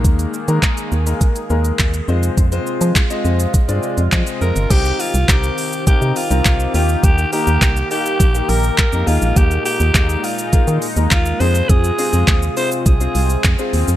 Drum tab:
CC |----------------|----------------|x---------------|----------------|
HH |xx-xxx-xxx-xxx-x|xx-xxx-xxx-xxx-x|x-o-x-o-x-o-x-o-|x-o-x-o-x-o-x-o-|
SH |xxxxxxxxxxxxxxxx|xxxxxxxxxxxxxxxx|xxxxxxxxxxxxxxxx|xxxxxxxxxxxxxxxx|
CP |----x-------x---|----x-------x---|----x-------x---|----x-------x---|
BD |o---o---o---o---|o---o---o---o---|o---o---o---o---|o---o---o---o---|

CC |----------------|----------------|
HH |x-o-x-o-x-o-x-o-|x-o-x-o-x-o-x-o-|
SH |xxxxxxxxxxxxxxxx|xxxxxxxxxxxxxxxx|
CP |----x-------x---|----x-------x---|
BD |o---o---o---o---|o---o---o---o---|